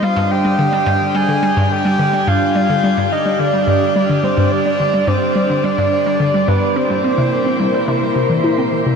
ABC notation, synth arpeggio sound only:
X:1
M:4/4
L:1/16
Q:1/4=107
K:Gphr
V:1 name="Synth arpeggio sound" clef=bass
G, G,, z G, D, G, G,, z G, D, G, G,, z G, D, G, | G,, z G, D, G, G,, z G, D, G, G,, z G, D, G, G,, | z G, D, G, G,, z G, D, G, G,, z G, D, G, G,, z | C G, C C, z C G, C C, z C, =E, =E C z C, |]